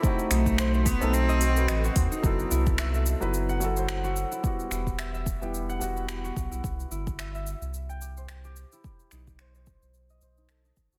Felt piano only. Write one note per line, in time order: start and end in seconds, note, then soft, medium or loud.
0.02 0.97 A3 medium
0.02 0.98 C4 medium
0.02 0.98 D#4 medium
0.06 0.99 F#4 loud
1.00 1.38 A3 medium
1.00 1.38 C4 medium
1.00 1.39 D#4 medium
1.00 1.39 A4 loud
2.22 3.17 F#3 medium
2.22 3.18 B3 medium
2.22 3.19 E4 medium
2.22 3.19 A4 medium
3.20 3.58 F#3 medium
3.20 3.58 B3 medium
3.20 3.59 E4 medium
3.20 3.59 B4 medium
3.60 4.40 F#3 medium
3.60 4.42 E4 medium
3.64 4.42 A4 medium
4.43 5.38 G3 medium
4.43 5.38 B3 medium
4.43 5.39 E4 medium
4.47 5.40 F#4 medium
5.41 5.78 G3 medium
5.41 5.79 B3 medium
5.41 5.79 E4 medium
5.41 5.80 G4 medium
5.79 6.60 G3 medium
5.79 6.61 B3 medium
5.79 6.61 E4 medium
5.79 6.62 F#4 medium